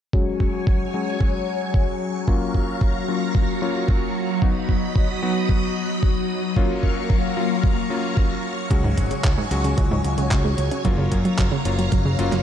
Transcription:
0.13 electric grand piano F#3 G#3 C#4 F#4, string machine F#3 C#5 G#5 C#6, kick
0.40 kick
0.67 kick
0.94 electric grand piano F#3 G#3 C#4 F#4
1.21 kick
1.74 kick
2.28 electric grand piano F#3 A#3 C#4 F4, string machine F5 A#5, kick
2.54 kick
2.81 kick
3.08 electric grand piano F#3 A#3 C#4 F4
3.35 kick
3.62 electric grand piano F#3 A#3 C#4 F4
3.88 kick
4.42 electric grand piano F#3 B3 D#4 F#4, string machine D#5 B5 D#6, kick
4.69 kick
4.96 kick
5.22 electric grand piano F#3 B3 D#4 F#4
5.49 kick
6.03 kick
6.56 electric grand piano F#3 A#3 C#4 F4, string machine A#3 F5 A#5 C#6, kick
6.83 kick
7.10 kick
7.37 electric grand piano F#3 A#3 C#4 F4
7.64 kick
7.90 electric grand piano F#3 A#3 C#4 F4
8.17 kick
8.71 picked electric bass C#2, synth arpeggio sound C#3, electric grand piano F#3 G#3 C#4 F#4, string machine C#5 G#5, kick, closed hi-hat
8.84 synth arpeggio sound G#2
8.97 picked electric bass G#1, kick, closed hi-hat
9.11 synth arpeggio sound C#3, closed hi-hat
9.24 picked electric bass C#2, synth arpeggio sound C#3, kick, clap, closed hi-hat
9.38 synth arpeggio sound G#2
9.51 picked electric bass C#2, electric grand piano F#3 G#3 C#4 F#4, closed hi-hat
9.64 synth arpeggio sound C#3, closed hi-hat
9.78 picked electric bass C#2, synth arpeggio sound C#3, kick, closed hi-hat
9.91 synth arpeggio sound G#2
10.04 picked electric bass C#2, closed hi-hat
10.18 picked electric bass C#2, synth arpeggio sound C#3, closed hi-hat
10.31 picked electric bass C#2, synth arpeggio sound C#3, kick, clap, closed hi-hat
10.45 synth arpeggio sound G#2
10.58 picked electric bass C#2, closed hi-hat
10.71 synth arpeggio sound C#3, closed hi-hat
10.85 picked electric bass F#1, synth arpeggio sound F#3, electric grand piano F#3 A#3 C#4 F4, string machine F5 A#5, kick, closed hi-hat
10.98 synth arpeggio sound C#3
11.12 picked electric bass F#2, kick, closed hi-hat
11.25 synth arpeggio sound F#3, closed hi-hat
11.38 picked electric bass F#1, synth arpeggio sound F#3, kick, clap, closed hi-hat
11.52 synth arpeggio sound C#3
11.65 picked electric bass F#1, electric grand piano F#3 A#3 C#4 F4, closed hi-hat
11.79 synth arpeggio sound F#3, closed hi-hat
11.92 picked electric bass F#1, synth arpeggio sound F#3, kick, closed hi-hat
12.05 synth arpeggio sound C#3
12.19 picked electric bass F#1, electric grand piano F#3 A#3 C#4 F4, closed hi-hat
12.32 picked electric bass F#1, synth arpeggio sound F#3, clap, closed hi-hat

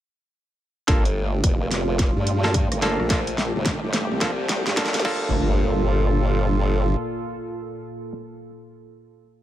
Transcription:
0.88 wobble bass G1, ambient pad A#2 A3 F4, clav A#3 D4 F4 A4, kick, snare, closed hi-hat, riser
1.05 closed hi-hat
1.44 wobble bass F1, kick, closed hi-hat
1.71 wobble bass F1, snare, closed hi-hat
1.99 kick, snare, closed hi-hat
2.16 wobble bass G2
2.27 closed hi-hat
2.44 clav A#3 D4 F4 A4, snare
2.54 kick, closed hi-hat
2.72 wobble bass G1, cross-stick, closed hi-hat
2.82 clav A#3 D4 F4 A4, snare, closed hi-hat
3.00 wobble bass A#1, cross-stick
3.10 clav A#3 D4 F4 A4, ambient pad G4, kick, snare, closed hi-hat
3.27 closed hi-hat
3.38 snare
3.56 wobble bass G1
3.65 kick, snare, closed hi-hat
3.83 wobble bass G1
3.93 snare, closed hi-hat
4.11 wobble bass C2
4.21 clav A#3 D4 F4 A4, kick, snare, closed hi-hat
4.49 snare, closed hi-hat
4.67 wobble bass G2, snare
4.77 clav A#3 D4 F4 A4, kick, snare, closed hi-hat
4.85 snare
4.94 snare, closed hi-hat
4.96 snare
4.99 snare
5.01 snare
5.03 wobble bass G1, ambient pad A#2 F4 A4, clav A#3 D4 F4 A4, kick, snare, crash, impact

